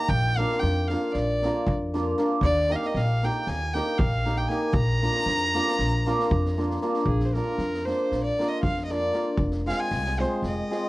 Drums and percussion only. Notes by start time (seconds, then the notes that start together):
0.09 kick
0.36 snare
0.49 snare
0.61 snare
0.89 snare
1.13 snare
1.42 snare
1.67 kick
1.94 snare
2.17 snare
2.41 kick
2.70 snare
2.82 snare
2.95 snare
3.23 snare
3.47 snare
3.75 snare
3.99 kick
4.26 snare
4.49 snare
4.74 kick
5.02 snare
5.14 snare
5.26 snare
5.55 snare
5.67 snare
5.79 snare
6.07 snare
6.20 snare
6.31 kick
6.45 snare
6.59 snare
6.70 snare
6.81 snare
6.94 snare
7.06 kick
7.20 snare
7.34 snare
7.58 snare
7.73 snare
7.87 snare
8.11 snare
8.40 snare
8.63 kick
8.76 snare
8.88 snare
9.13 snare
9.38 kick
9.51 snare
9.90 snare
10.05 snare
10.19 snare
10.43 snare
10.71 snare